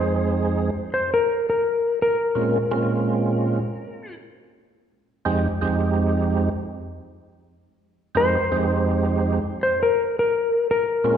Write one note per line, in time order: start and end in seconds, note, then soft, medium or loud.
0.00 0.70 F2 medium
0.00 0.70 G#3 medium
0.00 0.70 C4 medium
0.00 0.70 D#4 medium
0.00 0.70 G#4 medium
0.00 0.88 C5 medium
0.94 1.11 C5 medium
1.14 1.47 A#4 medium
1.50 1.99 A#4 medium
2.02 4.14 A#4 medium
2.35 2.58 A#2 medium
2.35 2.58 G#3 medium
2.35 2.58 C4 medium
2.35 2.58 C#4 medium
2.35 2.58 F4 medium
2.71 3.59 A#2 medium
2.71 3.60 G#3 medium
2.71 3.60 C4 medium
2.71 3.60 C#4 medium
2.71 3.60 F4 medium
5.25 5.48 F2 medium
5.25 5.48 G#3 medium
5.25 5.48 C4 medium
5.25 5.48 D#4 medium
5.25 5.48 G4 medium
5.61 6.50 F2 medium
5.61 6.49 G#3 medium
5.61 6.50 C4 medium
5.61 6.50 D#4 medium
5.61 6.49 G4 medium
8.15 8.37 F2 medium
8.15 8.38 G#3 medium
8.15 8.37 C4 medium
8.15 8.38 D#4 medium
8.15 8.37 G4 medium
8.15 9.57 C5 loud
8.52 9.39 F2 medium
8.52 9.39 G#3 medium
8.52 9.39 C4 medium
8.52 9.39 D#4 medium
8.52 9.39 G4 medium
9.63 9.80 C5 medium
9.83 10.16 A#4 medium
10.19 10.69 A#4 medium
10.71 11.17 A#4 medium
11.04 11.17 A#2 medium
11.04 11.17 G#3 medium
11.04 11.17 C4 medium
11.04 11.17 C#4 medium
11.04 11.17 F4 medium